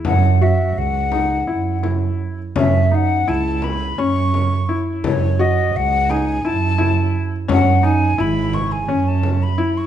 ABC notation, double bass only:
X:1
M:7/8
L:1/8
Q:1/4=85
K:F#dor
V:1 name="Double bass" clef=bass
F,,2 C,,2 F,,3 | F,,2 C,,2 F,,3 | F,,2 C,,2 F,,3 | F,,2 G,,,2 F,,3 |]